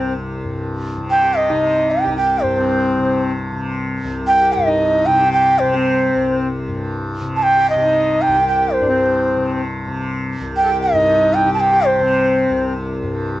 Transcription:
0.00 2.05 C2 medium
0.00 0.44 G2 medium
0.00 0.97 C3 medium
0.00 0.13 C4 medium
0.44 2.43 G2 medium
0.97 1.51 C3 medium
1.10 1.39 G5 loud
1.23 1.51 G4 medium
1.37 1.93 D#5 medium
1.49 2.98 C3 medium
1.49 2.04 D#4 medium
1.91 2.16 G5 medium
2.04 4.04 C2 medium
2.04 2.10 G4 medium
2.09 2.15 D#4 medium
2.16 2.58 G4 medium
2.16 2.44 G5 medium
2.43 4.56 G2 medium
2.43 3.22 C5 medium
2.57 3.32 C4 medium
2.98 3.52 C3 medium
3.52 5.08 C3 medium
4.04 6.15 C2 medium
4.27 4.54 G5 loud
4.41 4.68 G4 medium
4.53 6.67 G2 medium
4.53 5.07 D#5 medium
4.67 5.21 D#4 medium
5.06 5.63 C3 medium
5.06 5.32 G5 loud
5.20 5.74 G4 medium
5.33 5.61 G5 loud
5.59 7.21 C3 medium
5.59 6.38 C5 medium
5.73 6.48 C4 medium
6.16 8.27 C2 medium
6.68 8.81 G2 medium
7.21 7.76 C3 medium
7.36 7.44 A5 medium
7.43 7.69 G5 loud
7.56 7.75 G4 medium
7.70 8.23 D#5 loud
7.76 9.36 C3 medium
7.76 7.82 G4 medium
7.82 8.36 D#4 medium
8.22 8.47 G5 loud
8.28 10.40 C2 medium
8.34 8.59 G4 medium
8.48 8.75 G5 medium
8.60 8.81 G4 medium
8.73 9.52 C5 medium
8.81 10.93 G2 medium
8.81 8.87 D4 soft
8.87 9.61 C4 medium
9.36 9.87 C3 medium
9.87 11.45 C3 medium
10.41 12.49 C2 medium
10.57 10.81 G5 loud
10.63 10.69 A4 medium
10.68 10.96 G4 medium
10.82 11.36 D#5 loud
10.93 13.02 G2 medium
10.93 11.49 D#4 medium
11.34 11.53 G5 loud
11.45 11.98 C3 medium
11.45 11.71 G4 medium
11.54 11.61 A5 medium
11.60 11.88 G5 loud
11.72 12.00 G4 medium
11.86 12.64 C5 medium
11.98 13.40 C3 medium
11.98 12.73 C4 medium
12.50 13.40 C2 medium
13.02 13.40 G2 medium

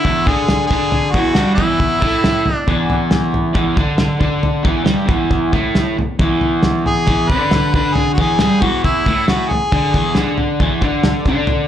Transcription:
0.00 0.29 E4 medium
0.04 0.26 E2 medium
0.04 0.26 E3 medium
0.04 kick medium
0.04 floor tom medium
0.26 0.69 D3 medium
0.26 0.70 D4 medium
0.26 0.66 G#4 loud
0.26 kick loud
0.26 floor tom medium
0.49 snare loud
0.49 floor tom medium
0.67 1.14 D3 medium
0.67 1.12 G#4 loud
0.67 kick loud
0.67 floor tom medium
0.72 1.14 D4 loud
0.92 floor tom medium
1.11 1.35 E2 medium
1.11 1.54 F#4 medium
1.11 kick loud
1.11 floor tom medium
1.16 1.36 E3 medium
1.35 1.58 G2 medium
1.35 1.58 G3 loud
1.35 snare loud
1.35 floor tom medium
1.54 2.01 E2 medium
1.54 2.55 E4 loud
1.54 kick loud
1.54 floor tom medium
1.59 2.01 E3 medium
1.80 kick medium
1.80 floor tom medium
2.00 2.44 A2 medium
2.00 2.44 A3 loud
2.00 kick medium
2.00 floor tom medium
2.24 snare loud
2.24 floor tom medium
2.46 2.63 E2 medium
2.46 floor tom medium
2.55 3.05 D4 loud
2.67 3.53 E2 medium
2.67 3.55 E3 medium
2.67 kick medium
2.67 floor tom medium
2.90 floor tom medium
3.11 snare loud
3.11 floor tom medium
3.34 floor tom medium
3.54 3.76 E2 medium
3.54 3.77 E3 loud
3.54 kick loud
3.54 floor tom medium
3.77 4.19 D3 medium
3.77 4.19 D4 medium
3.77 kick loud
3.77 floor tom medium
3.98 snare loud
3.98 floor tom medium
4.20 4.64 D3 medium
4.20 4.64 D4 loud
4.20 kick medium
4.20 floor tom medium
4.43 floor tom medium
4.63 4.83 E2 medium
4.63 4.84 E3 loud
4.63 kick loud
4.63 floor tom medium
4.83 5.06 G2 medium
4.83 5.07 G3 loud
4.83 snare loud
4.83 floor tom medium
5.06 5.51 E2 medium
5.06 5.51 E3 medium
5.06 kick loud
5.06 floor tom medium
5.31 kick medium
5.31 floor tom medium
5.52 5.96 A2 medium
5.52 5.96 A3 medium
5.52 kick loud
5.52 floor tom medium
5.75 snare loud
5.75 floor tom medium
5.97 6.15 E2 medium
5.97 floor tom medium
6.19 7.05 E2 medium
6.19 7.07 E3 loud
6.19 kick loud
6.19 floor tom medium
6.41 floor tom medium
6.63 snare medium
6.63 floor tom medium
6.86 7.30 G#4 loud
6.86 floor tom medium
7.07 7.28 E2 medium
7.07 7.29 E3 loud
7.07 kick loud
7.07 floor tom medium
7.29 7.73 D3 medium
7.29 7.74 D4 medium
7.29 7.73 B4 loud
7.29 kick loud
7.29 floor tom medium
7.51 snare loud
7.51 floor tom medium
7.74 8.18 D3 medium
7.74 8.18 D4 medium
7.74 7.96 B4 medium
7.74 kick loud
7.74 floor tom medium
7.94 8.10 G#4 medium
7.94 floor tom medium
8.13 8.22 F#4 medium
8.18 8.39 E2 medium
8.18 8.40 E3 medium
8.18 8.63 G#4 medium
8.18 kick loud
8.18 floor tom medium
8.39 8.60 G2 loud
8.39 8.61 G3 loud
8.39 snare loud
8.39 floor tom medium
8.61 9.05 E2 medium
8.61 9.05 E3 medium
8.61 8.84 F#4 medium
8.61 kick loud
8.61 floor tom medium
8.84 9.25 E4 medium
8.84 kick loud
8.84 floor tom medium
9.06 9.50 A2 medium
9.06 9.50 A3 medium
9.06 kick medium
9.06 floor tom medium
9.28 9.50 F#4 medium
9.28 snare loud
9.28 floor tom medium
9.49 9.68 E2 medium
9.49 10.38 G#4 medium
9.49 floor tom medium
9.72 9.93 D3 medium
9.72 9.94 D4 medium
9.72 kick loud
9.72 floor tom medium
9.94 10.15 E2 medium
9.94 10.16 E3 medium
9.94 kick loud
9.94 floor tom medium
10.15 10.59 D3 medium
10.15 10.60 D4 medium
10.15 snare medium
10.15 floor tom medium
10.38 floor tom medium
10.60 10.82 E2 medium
10.60 10.82 E3 loud
10.60 kick medium
10.60 floor tom medium
10.81 11.25 D3 medium
10.81 11.26 D4 medium
10.81 kick medium
10.81 floor tom medium
11.04 snare loud
11.04 floor tom medium
11.25 11.68 D3 medium
11.25 11.68 D4 medium
11.25 kick loud
11.25 floor tom medium
11.47 floor tom medium

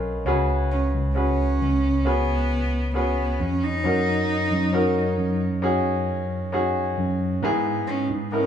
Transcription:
0.00 0.23 B1 medium
0.00 0.26 C#4 medium
0.00 0.28 F4 medium
0.00 0.27 G#4 medium
0.00 0.23 A#4 medium
0.00 0.22 B4 medium
0.00 0.28 C#5 medium
0.00 0.28 D#5 medium
0.00 0.28 F5 medium
0.00 0.28 F#5 medium
0.00 0.28 G#5 medium
0.26 0.89 C#2 medium
0.26 1.57 C#3 medium
0.26 1.11 C#4 medium
0.26 1.11 F#4 medium
0.26 1.12 G#4 medium
0.26 1.12 B4 medium
0.72 0.92 C#4 medium
0.93 1.56 C#2 medium
1.15 2.00 C#4 medium
1.15 2.08 C#4 medium
1.15 2.01 F#4 medium
1.15 2.01 G#4 medium
1.15 2.02 B4 medium
1.60 3.36 C#2 medium
2.05 2.94 B3 medium
2.05 2.90 C#4 medium
2.05 2.90 F#4 medium
2.05 2.91 G#4 medium
2.05 2.91 B4 medium
2.94 3.42 B3 medium
2.94 3.80 C#4 medium
2.94 3.80 F#4 medium
2.94 3.80 G#4 medium
2.94 3.81 B4 medium
3.40 3.81 F2 medium
3.40 3.65 C#4 medium
3.64 5.42 D#4 medium
3.84 4.47 F#2 medium
3.84 4.69 C#4 medium
3.84 4.70 D#4 medium
3.84 4.70 F#4 medium
3.84 4.70 A#4 medium
4.51 5.14 F#2 medium
4.73 5.59 C#4 medium
4.73 5.59 D#4 medium
4.73 5.59 F#4 medium
4.73 5.59 A#4 medium
5.18 6.93 F#2 medium
5.62 6.48 C#4 medium
5.62 6.48 D#4 medium
5.62 6.49 F#4 medium
5.62 6.49 G#4 medium
6.52 7.38 C#4 medium
6.52 7.38 D#4 medium
6.52 7.38 F#4 medium
6.52 7.39 G#4 medium
6.98 7.40 F#2 medium
7.42 8.06 G#2 loud
7.42 8.46 G#2 medium
7.42 8.28 B3 medium
7.42 8.28 D#4 medium
7.42 8.28 E4 medium
7.42 8.29 G#4 medium
7.87 8.07 C#4 medium
8.09 8.46 G#2 medium
8.32 8.46 B3 medium
8.32 8.46 C#4 medium
8.32 8.46 D#4 medium
8.32 8.46 E4 medium
8.32 8.46 A#4 medium

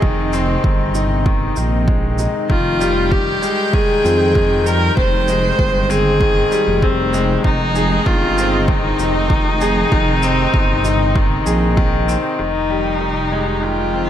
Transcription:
0.00 0.57 F1 loud
0.00 2.46 C3 medium
0.00 0.02 D#3 medium
0.00 0.32 D#3 medium
0.00 0.33 C4 medium
0.00 0.95 D#4 medium
0.00 2.46 D#4 medium
0.00 2.52 G#4 medium
0.00 kick medium
0.33 0.63 C4 medium
0.33 shaker medium
0.64 1.50 G1 medium
0.64 0.93 D#3 medium
0.64 kick medium
0.95 1.24 D#4 medium
0.95 shaker medium
1.26 1.44 D#3 medium
1.26 kick loud
1.56 2.27 A#1 medium
1.56 1.86 D#3 medium
1.56 shaker medium
1.88 2.05 G#3 medium
1.88 kick loud
2.18 2.48 D#4 medium
2.18 shaker medium
2.49 3.35 F1 loud
2.49 7.40 D#3 medium
2.49 2.79 D#3 medium
2.49 3.13 F4 medium
2.49 7.40 G5 medium
2.49 kick medium
2.81 3.10 G3 medium
2.81 shaker medium
3.12 3.41 D#3 medium
3.12 3.75 G4 loud
3.12 kick medium
3.42 3.72 G#3 medium
3.42 shaker medium
3.73 3.91 D#3 medium
3.73 4.68 G#4 loud
3.73 kick loud
4.04 4.90 F2 medium
4.04 4.22 C4 medium
4.04 shaker medium
4.35 4.53 D#3 medium
4.35 kick medium
4.66 4.84 G3 medium
4.66 4.97 A#4 loud
4.66 shaker medium
4.97 5.52 F1 loud
4.97 5.26 D#3 medium
4.97 5.91 C5 loud
4.97 kick loud
5.28 5.57 G#3 medium
5.28 shaker medium
5.59 6.45 G1 medium
5.59 5.88 D#3 medium
5.59 kick medium
5.90 6.19 C4 medium
5.90 6.84 G#4 loud
5.90 shaker medium
6.21 6.50 D#3 medium
6.21 kick loud
6.51 6.81 G3 medium
6.51 shaker medium
6.67 7.38 F1 loud
6.82 7.12 D#3 medium
6.82 7.44 C4 medium
6.82 kick medium
7.13 7.43 G#3 medium
7.13 shaker medium
7.44 7.99 F1 loud
7.44 12.35 C3 medium
7.44 7.62 D#3 medium
7.44 9.89 G#3 medium
7.44 12.35 D#4 medium
7.44 8.08 D#4 medium
7.44 kick medium
7.75 7.93 G#4 medium
7.75 shaker medium
8.06 8.92 G1 medium
8.06 8.24 D#3 loud
8.06 8.70 F4 medium
8.06 kick medium
8.38 8.55 C4 medium
8.38 shaker medium
8.68 8.98 D#3 medium
8.68 11.78 D#4 medium
8.68 kick medium
8.99 9.85 F1 medium
8.99 9.29 D#4 medium
8.99 shaker medium
9.30 9.60 D#3 medium
9.30 kick loud
9.61 9.91 G#4 medium
9.61 shaker medium
9.92 10.47 F1 loud
9.92 10.21 D#3 loud
9.92 kick loud
10.23 10.52 C4 loud
10.23 shaker medium
10.54 11.40 G1 medium
10.54 kick medium
10.84 11.14 D#4 medium
10.84 shaker medium
11.16 11.33 D#3 medium
11.16 kick loud
11.46 12.17 A#1 medium
11.46 11.64 G#4 medium
11.46 shaker medium
11.77 11.95 D#3 medium
11.77 kick medium
12.08 12.26 C4 medium
12.08 shaker medium
12.39 14.10 F1 medium
12.39 12.69 D#3 medium
12.39 14.10 D#3 medium
12.39 13.64 D#4 medium
12.39 14.10 G4 medium
12.70 13.00 G3 medium
13.01 13.31 D#3 medium
13.32 13.61 G#3 medium
13.63 13.81 D#3 medium
13.63 14.10 F4 medium
13.94 14.10 C4 medium

